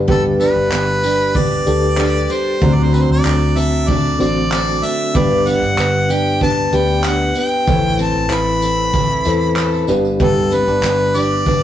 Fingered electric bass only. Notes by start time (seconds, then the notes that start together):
Already playing: G1
0.56 G1
0.71 G1
1.67 D2
2.62 D2
3.09 D2
3.24 D2
4.19 A1
5.15 G1
5.62 G1
5.78 G1
6.72 D2
7.67 A1
8.15 A1
8.30 A1
9.25 E2
9.88 G1
10.67 G1
10.83 G1